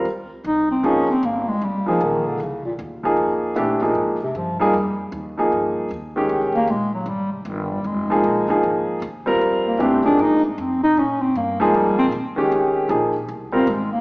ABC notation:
X:1
M:4/4
L:1/8
Q:"Swing" 1/4=154
K:Fm
V:1 name="Grand piano"
z4 [F,B,EA] z3 | z [F,B,EA]3 z3 [F,B,EA]- | [F,B,EA]2 [=E,=A,=DG] [F,B,_E_A]2 z2 [F,B,EA] | z3 [F,B,EA]3 z [E,A,DG]- |
[E,A,DG]2 z6 | z [F,B,EA]2 [F,B,EA]3 z [G,CFB]- | [G,CFB]2 [=E,=A,=DG] [F,B,_E_A]2 z3 | z3 [F,B,EA]3 z [E,A,DG]- |
[E,A,DG]2 [F,B,EA] z2 [G,CFB] z2 |]
V:2 name="Bass clarinet" clef=bass
z2 E C D C B, A, | G, F, E, =D, _D, B,, z2 | z4 z C, F, G,- | G, z6 z |
z B, A, _G, =G, C, E, G, | A,4 z4 | z B, C =D E G, C E | D C B, A, G, C z2 |
z4 z C A, B, |]
V:3 name="Upright bass" clef=bass
D,,2 C,,2 A,,,2 G,,,2 | F,,,2 B,,,2 C,,2 E,,2 | F,,2 B,,2 A,,2 G,,2 | F,,2 E,,2 G,,2 E,,2 |
(3C,, A,,, F,,, B,,,2 A,,,2 G,,,2 | F,,,2 B,,, z A,,,2 E,,2 | F,,2 G,,2 A,,2 F,,2 | B,,2 G,,2 (3F,, D,, B,,, E,,2 |
D,,2 B,,,2 C,,2 A,,,2 |]